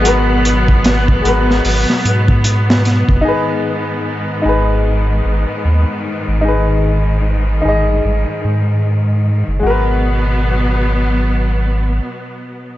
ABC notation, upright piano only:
X:1
M:4/4
L:1/8
Q:"Swing 16ths" 1/4=75
K:G#m
V:1 name="Upright piano"
[G,FAB]3 [G,FAB]4- [G,FAB] | [DGB]3 [DGB]4- [DGB] | [DGB]3 [DGd]4- [DGd] | [G,FAB]8 |]